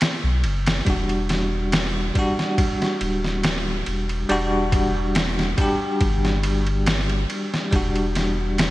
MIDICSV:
0, 0, Header, 1, 4, 480
1, 0, Start_track
1, 0, Key_signature, 1, "minor"
1, 0, Tempo, 857143
1, 483, Time_signature, 4, 2, 24, 8
1, 4874, End_track
2, 0, Start_track
2, 0, Title_t, "Tine electric piano"
2, 0, Program_c, 0, 4
2, 0, Control_c, 0, 64, 127
2, 477, Note_on_c, 0, 55, 71
2, 489, Note_on_c, 0, 62, 63
2, 503, Note_on_c, 0, 66, 73
2, 1173, Note_off_c, 0, 55, 0
2, 1180, Note_off_c, 0, 62, 0
2, 1186, Note_off_c, 0, 66, 0
2, 1198, Note_on_c, 0, 55, 76
2, 1211, Note_on_c, 0, 62, 65
2, 1225, Note_on_c, 0, 66, 84
2, 2374, Note_off_c, 0, 55, 0
2, 2381, Note_off_c, 0, 62, 0
2, 2387, Note_off_c, 0, 66, 0
2, 2402, Note_on_c, 0, 55, 93
2, 2409, Note_on_c, 0, 62, 82
2, 2416, Note_on_c, 0, 66, 98
2, 2531, Note_off_c, 0, 55, 0
2, 2534, Note_off_c, 0, 62, 0
2, 2538, Note_off_c, 0, 66, 0
2, 3120, Note_on_c, 0, 55, 85
2, 3131, Note_on_c, 0, 62, 78
2, 3144, Note_on_c, 0, 67, 97
2, 4295, Note_off_c, 0, 55, 0
2, 4300, Note_off_c, 0, 62, 0
2, 4307, Note_off_c, 0, 67, 0
2, 4318, Note_on_c, 0, 55, 68
2, 4330, Note_on_c, 0, 62, 66
2, 4344, Note_on_c, 0, 66, 81
2, 4874, Note_off_c, 0, 55, 0
2, 4874, Note_off_c, 0, 62, 0
2, 4874, Note_off_c, 0, 66, 0
2, 4874, End_track
3, 0, Start_track
3, 0, Title_t, "Sub bass"
3, 0, Program_c, 1, 38
3, 133, Note_on_c, 1, 35, 83
3, 244, Note_on_c, 1, 30, 84
3, 252, Note_off_c, 1, 35, 0
3, 457, Note_off_c, 1, 30, 0
3, 484, Note_on_c, 1, 28, 92
3, 1182, Note_off_c, 1, 28, 0
3, 1687, Note_on_c, 1, 26, 91
3, 2144, Note_off_c, 1, 26, 0
3, 2169, Note_on_c, 1, 28, 90
3, 2379, Note_off_c, 1, 28, 0
3, 2408, Note_on_c, 1, 28, 94
3, 3104, Note_off_c, 1, 28, 0
3, 3365, Note_on_c, 1, 31, 105
3, 4063, Note_off_c, 1, 31, 0
3, 4328, Note_on_c, 1, 28, 102
3, 4874, Note_off_c, 1, 28, 0
3, 4874, End_track
4, 0, Start_track
4, 0, Title_t, "Drums"
4, 4, Note_on_c, 9, 51, 74
4, 10, Note_on_c, 9, 38, 101
4, 60, Note_off_c, 9, 51, 0
4, 66, Note_off_c, 9, 38, 0
4, 244, Note_on_c, 9, 51, 58
4, 300, Note_off_c, 9, 51, 0
4, 372, Note_on_c, 9, 51, 73
4, 378, Note_on_c, 9, 38, 97
4, 428, Note_off_c, 9, 51, 0
4, 434, Note_off_c, 9, 38, 0
4, 484, Note_on_c, 9, 51, 80
4, 485, Note_on_c, 9, 36, 100
4, 540, Note_off_c, 9, 51, 0
4, 541, Note_off_c, 9, 36, 0
4, 612, Note_on_c, 9, 51, 41
4, 668, Note_off_c, 9, 51, 0
4, 724, Note_on_c, 9, 51, 69
4, 730, Note_on_c, 9, 38, 50
4, 780, Note_off_c, 9, 51, 0
4, 786, Note_off_c, 9, 38, 0
4, 965, Note_on_c, 9, 51, 86
4, 971, Note_on_c, 9, 38, 113
4, 1021, Note_off_c, 9, 51, 0
4, 1027, Note_off_c, 9, 38, 0
4, 1205, Note_on_c, 9, 36, 88
4, 1206, Note_on_c, 9, 51, 65
4, 1261, Note_off_c, 9, 36, 0
4, 1262, Note_off_c, 9, 51, 0
4, 1339, Note_on_c, 9, 38, 47
4, 1395, Note_off_c, 9, 38, 0
4, 1445, Note_on_c, 9, 36, 98
4, 1445, Note_on_c, 9, 51, 82
4, 1501, Note_off_c, 9, 36, 0
4, 1501, Note_off_c, 9, 51, 0
4, 1579, Note_on_c, 9, 38, 47
4, 1635, Note_off_c, 9, 38, 0
4, 1685, Note_on_c, 9, 51, 66
4, 1741, Note_off_c, 9, 51, 0
4, 1817, Note_on_c, 9, 38, 37
4, 1873, Note_off_c, 9, 38, 0
4, 1923, Note_on_c, 9, 51, 79
4, 1929, Note_on_c, 9, 38, 111
4, 1979, Note_off_c, 9, 51, 0
4, 1985, Note_off_c, 9, 38, 0
4, 2164, Note_on_c, 9, 51, 65
4, 2220, Note_off_c, 9, 51, 0
4, 2292, Note_on_c, 9, 51, 41
4, 2348, Note_off_c, 9, 51, 0
4, 2405, Note_on_c, 9, 51, 83
4, 2461, Note_off_c, 9, 51, 0
4, 2645, Note_on_c, 9, 36, 97
4, 2645, Note_on_c, 9, 51, 63
4, 2701, Note_off_c, 9, 36, 0
4, 2701, Note_off_c, 9, 51, 0
4, 2884, Note_on_c, 9, 51, 81
4, 2890, Note_on_c, 9, 38, 109
4, 2940, Note_off_c, 9, 51, 0
4, 2946, Note_off_c, 9, 38, 0
4, 3018, Note_on_c, 9, 38, 45
4, 3074, Note_off_c, 9, 38, 0
4, 3123, Note_on_c, 9, 51, 63
4, 3124, Note_on_c, 9, 36, 98
4, 3179, Note_off_c, 9, 51, 0
4, 3180, Note_off_c, 9, 36, 0
4, 3363, Note_on_c, 9, 51, 76
4, 3364, Note_on_c, 9, 36, 99
4, 3419, Note_off_c, 9, 51, 0
4, 3420, Note_off_c, 9, 36, 0
4, 3499, Note_on_c, 9, 38, 47
4, 3555, Note_off_c, 9, 38, 0
4, 3603, Note_on_c, 9, 51, 62
4, 3659, Note_off_c, 9, 51, 0
4, 3733, Note_on_c, 9, 51, 41
4, 3789, Note_off_c, 9, 51, 0
4, 3844, Note_on_c, 9, 51, 84
4, 3850, Note_on_c, 9, 38, 113
4, 3900, Note_off_c, 9, 51, 0
4, 3906, Note_off_c, 9, 38, 0
4, 3973, Note_on_c, 9, 51, 42
4, 4029, Note_off_c, 9, 51, 0
4, 4086, Note_on_c, 9, 51, 67
4, 4142, Note_off_c, 9, 51, 0
4, 4220, Note_on_c, 9, 38, 52
4, 4276, Note_off_c, 9, 38, 0
4, 4326, Note_on_c, 9, 36, 98
4, 4326, Note_on_c, 9, 51, 81
4, 4382, Note_off_c, 9, 36, 0
4, 4382, Note_off_c, 9, 51, 0
4, 4455, Note_on_c, 9, 51, 40
4, 4511, Note_off_c, 9, 51, 0
4, 4566, Note_on_c, 9, 51, 70
4, 4572, Note_on_c, 9, 38, 50
4, 4622, Note_off_c, 9, 51, 0
4, 4628, Note_off_c, 9, 38, 0
4, 4807, Note_on_c, 9, 51, 84
4, 4813, Note_on_c, 9, 38, 104
4, 4863, Note_off_c, 9, 51, 0
4, 4869, Note_off_c, 9, 38, 0
4, 4874, End_track
0, 0, End_of_file